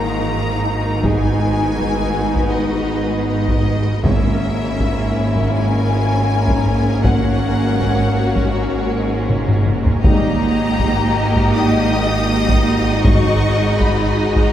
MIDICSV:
0, 0, Header, 1, 9, 480
1, 0, Start_track
1, 0, Key_signature, 5, "minor"
1, 0, Tempo, 750000
1, 668, Time_signature, 4, 2, 24, 8
1, 9297, End_track
2, 0, Start_track
2, 0, Title_t, "Violin section"
2, 0, Program_c, 0, 48
2, 0, Note_on_c, 0, 82, 73
2, 664, Note_off_c, 0, 82, 0
2, 673, Note_on_c, 0, 80, 85
2, 1626, Note_on_c, 0, 75, 69
2, 1631, Note_off_c, 0, 80, 0
2, 2097, Note_off_c, 0, 75, 0
2, 2104, Note_on_c, 0, 75, 73
2, 2577, Note_off_c, 0, 75, 0
2, 2586, Note_on_c, 0, 76, 81
2, 3528, Note_off_c, 0, 76, 0
2, 3541, Note_on_c, 0, 80, 92
2, 4485, Note_off_c, 0, 80, 0
2, 4508, Note_on_c, 0, 78, 81
2, 5468, Note_off_c, 0, 78, 0
2, 5471, Note_on_c, 0, 73, 66
2, 5950, Note_off_c, 0, 73, 0
2, 6423, Note_on_c, 0, 82, 103
2, 7360, Note_off_c, 0, 82, 0
2, 7385, Note_on_c, 0, 87, 91
2, 8340, Note_on_c, 0, 85, 88
2, 8347, Note_off_c, 0, 87, 0
2, 8814, Note_off_c, 0, 85, 0
2, 8826, Note_on_c, 0, 83, 71
2, 9187, Note_off_c, 0, 83, 0
2, 9189, Note_on_c, 0, 82, 68
2, 9297, Note_off_c, 0, 82, 0
2, 9297, End_track
3, 0, Start_track
3, 0, Title_t, "Violin section"
3, 0, Program_c, 1, 48
3, 0, Note_on_c, 1, 63, 42
3, 0, Note_on_c, 1, 70, 41
3, 636, Note_off_c, 1, 63, 0
3, 637, Note_off_c, 1, 70, 0
3, 659, Note_on_c, 1, 66, 44
3, 661, Note_on_c, 1, 71, 47
3, 2558, Note_off_c, 1, 66, 0
3, 2559, Note_off_c, 1, 71, 0
3, 2580, Note_on_c, 1, 64, 48
3, 2582, Note_on_c, 1, 70, 50
3, 4478, Note_off_c, 1, 64, 0
3, 4507, Note_on_c, 1, 66, 57
3, 6400, Note_off_c, 1, 70, 0
3, 6402, Note_off_c, 1, 66, 0
3, 6430, Note_on_c, 1, 67, 55
3, 6430, Note_on_c, 1, 75, 61
3, 8323, Note_off_c, 1, 67, 0
3, 8348, Note_on_c, 1, 66, 56
3, 9297, Note_off_c, 1, 66, 0
3, 9297, Note_off_c, 1, 75, 0
3, 9297, End_track
4, 0, Start_track
4, 0, Title_t, "French horn section"
4, 0, Program_c, 2, 60
4, 0, Note_on_c, 2, 58, 53
4, 0, Note_on_c, 2, 63, 49
4, 639, Note_off_c, 2, 58, 0
4, 664, Note_on_c, 2, 59, 52
4, 2474, Note_off_c, 2, 59, 0
4, 2474, Note_off_c, 2, 63, 0
4, 2583, Note_on_c, 2, 58, 62
4, 2586, Note_on_c, 2, 61, 61
4, 6321, Note_off_c, 2, 58, 0
4, 6321, Note_off_c, 2, 61, 0
4, 6430, Note_on_c, 2, 63, 60
4, 6431, Note_on_c, 2, 55, 61
4, 6601, Note_off_c, 2, 63, 0
4, 6602, Note_off_c, 2, 55, 0
4, 7391, Note_on_c, 2, 55, 56
4, 7393, Note_on_c, 2, 63, 59
4, 7562, Note_off_c, 2, 55, 0
4, 7563, Note_off_c, 2, 63, 0
4, 8346, Note_on_c, 2, 54, 61
4, 8347, Note_on_c, 2, 63, 61
4, 8519, Note_off_c, 2, 54, 0
4, 8519, Note_off_c, 2, 63, 0
4, 9297, End_track
5, 0, Start_track
5, 0, Title_t, "Viola section"
5, 0, Program_c, 3, 48
5, 0, Note_on_c, 3, 51, 48
5, 0, Note_on_c, 3, 63, 48
5, 643, Note_off_c, 3, 51, 0
5, 666, Note_on_c, 3, 56, 44
5, 2562, Note_off_c, 3, 56, 0
5, 2563, Note_off_c, 3, 63, 0
5, 2587, Note_on_c, 3, 58, 49
5, 2590, Note_on_c, 3, 61, 51
5, 6402, Note_off_c, 3, 58, 0
5, 6403, Note_off_c, 3, 61, 0
5, 6429, Note_on_c, 3, 63, 58
5, 6430, Note_on_c, 3, 58, 55
5, 8323, Note_off_c, 3, 58, 0
5, 8346, Note_on_c, 3, 56, 54
5, 9297, Note_off_c, 3, 56, 0
5, 9297, Note_off_c, 3, 63, 0
5, 9297, End_track
6, 0, Start_track
6, 0, Title_t, "Cello section"
6, 0, Program_c, 4, 48
6, 0, Note_on_c, 4, 44, 45
6, 2558, Note_off_c, 4, 44, 0
6, 2585, Note_on_c, 4, 44, 50
6, 6401, Note_off_c, 4, 44, 0
6, 6426, Note_on_c, 4, 44, 57
6, 9297, Note_off_c, 4, 44, 0
6, 9297, End_track
7, 0, Start_track
7, 0, Title_t, "Timpani"
7, 0, Program_c, 5, 47
7, 2589, Note_on_c, 5, 44, 57
7, 3283, Note_off_c, 5, 44, 0
7, 6431, Note_on_c, 5, 44, 61
7, 7124, Note_off_c, 5, 44, 0
7, 8351, Note_on_c, 5, 44, 60
7, 9044, Note_off_c, 5, 44, 0
7, 9297, End_track
8, 0, Start_track
8, 0, Title_t, "Double bass section"
8, 0, Program_c, 6, 48
8, 0, Note_on_c, 6, 32, 44
8, 2559, Note_off_c, 6, 32, 0
8, 2589, Note_on_c, 6, 32, 48
8, 6403, Note_off_c, 6, 32, 0
8, 6430, Note_on_c, 6, 32, 55
8, 9297, Note_off_c, 6, 32, 0
8, 9297, End_track
9, 0, Start_track
9, 0, Title_t, "Taiko and cinematic ensemble drums"
9, 664, Note_on_c, 9, 41, 83
9, 728, Note_off_c, 9, 41, 0
9, 1146, Note_on_c, 9, 41, 56
9, 1210, Note_off_c, 9, 41, 0
9, 1508, Note_on_c, 9, 41, 60
9, 1572, Note_off_c, 9, 41, 0
9, 2229, Note_on_c, 9, 41, 60
9, 2293, Note_off_c, 9, 41, 0
9, 2591, Note_on_c, 9, 41, 92
9, 2655, Note_off_c, 9, 41, 0
9, 3071, Note_on_c, 9, 41, 62
9, 3135, Note_off_c, 9, 41, 0
9, 3429, Note_on_c, 9, 41, 59
9, 3493, Note_off_c, 9, 41, 0
9, 4152, Note_on_c, 9, 41, 75
9, 4216, Note_off_c, 9, 41, 0
9, 4508, Note_on_c, 9, 41, 87
9, 4572, Note_off_c, 9, 41, 0
9, 4988, Note_on_c, 9, 41, 63
9, 5052, Note_off_c, 9, 41, 0
9, 5348, Note_on_c, 9, 41, 61
9, 5412, Note_off_c, 9, 41, 0
9, 5949, Note_on_c, 9, 47, 75
9, 6013, Note_off_c, 9, 47, 0
9, 6066, Note_on_c, 9, 45, 80
9, 6130, Note_off_c, 9, 45, 0
9, 6184, Note_on_c, 9, 47, 77
9, 6248, Note_off_c, 9, 47, 0
9, 6306, Note_on_c, 9, 43, 70
9, 6370, Note_off_c, 9, 43, 0
9, 6427, Note_on_c, 9, 41, 81
9, 6491, Note_off_c, 9, 41, 0
9, 6910, Note_on_c, 9, 41, 69
9, 6974, Note_off_c, 9, 41, 0
9, 7269, Note_on_c, 9, 41, 71
9, 7333, Note_off_c, 9, 41, 0
9, 7990, Note_on_c, 9, 41, 73
9, 8054, Note_off_c, 9, 41, 0
9, 8349, Note_on_c, 9, 41, 91
9, 8413, Note_off_c, 9, 41, 0
9, 8834, Note_on_c, 9, 41, 70
9, 8898, Note_off_c, 9, 41, 0
9, 9192, Note_on_c, 9, 41, 67
9, 9256, Note_off_c, 9, 41, 0
9, 9297, End_track
0, 0, End_of_file